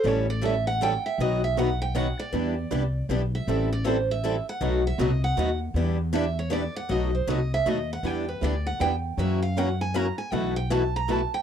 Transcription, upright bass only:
X:1
M:3/4
L:1/8
Q:"Swing" 1/4=158
K:Em
V:1 name="Upright bass" clef=bass
A,,,6 | B,,,6 | E,,2 C,,2 B,,,2 | A,,,6 |
B,,,2 C,,2 ^D,,2 | E,,6 | B,,,2 C,,2 ^D,,2 | E,,2 D,,2 E,,2 |
F,,6 | B,,,6 |]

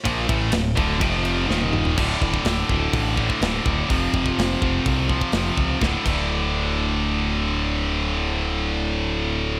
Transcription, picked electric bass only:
X:1
M:4/4
L:1/8
Q:1/4=125
K:Dphr
V:1 name="Picked electric bass" clef=bass
B,,, A,,, D,,, D,,, F,,,2 E,,,2 | D,,, D,,, D,,, D,,, A,,,2 D,,, D,,, | F,,, F,,, F,,, F,,, C,,2 F,,, ^C,, | D,,, D,,,6- D,,,- |
D,,,8 |]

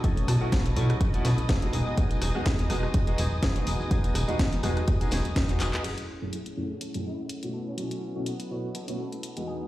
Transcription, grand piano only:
X:1
M:4/4
L:1/16
Q:"Swing 16ths" 1/4=124
K:E
V:1 name="Grand piano"
[A,CEF]2 z [A,CEF] z2 [A,CEF] z2 [A,CEF] z3 [G,B,DF]3 | [G,B,DF]2 z [G,B,DF] z2 [G,B,DF] z2 [G,B,DF] z3 [G,B,DF]3 | [G,B,DF]2 z [G,B,DF] z2 [G,B,DF] z2 [G,B,DF] z3 [G,B,DF]3 | [F,,A,CEG]2 z [F,,A,CEG] z2 [F,,A,CEG] z2 [F,,A,CEG] z3 [B,,A,CEF]3 |
[B,,A,CEF]2 z [B,,A,CEF] z2 [B,,A,CEF] z2 [B,,A,CEF] z3 [E,,G,B,DF]3 |]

